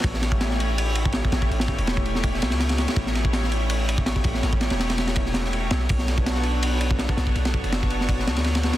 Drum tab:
RD |x-x-x-x-x-x-x-x-|xx-xx-x-x-xxxxxx|x-x-x-x-x-x-x-x-|x-xxxxxxx-x-x-x-|
SD |-oo-oo------o-o-|-o--o--o-ooooooo|-oo-oo------o--o|o-oooooo-ooo--o-|
BD |o--o-------o-o-o|--o--o--o-------|o--o-------o-oo-|-o------o-------|

RD |x-x-x-x-x-x-x-x-|xx-xx-x-x-xxxxxx|
SD |-oo-oo------o-o-|-o--o--o-ooooooo|
BD |o--o-------o-o-o|--o--o--o-------|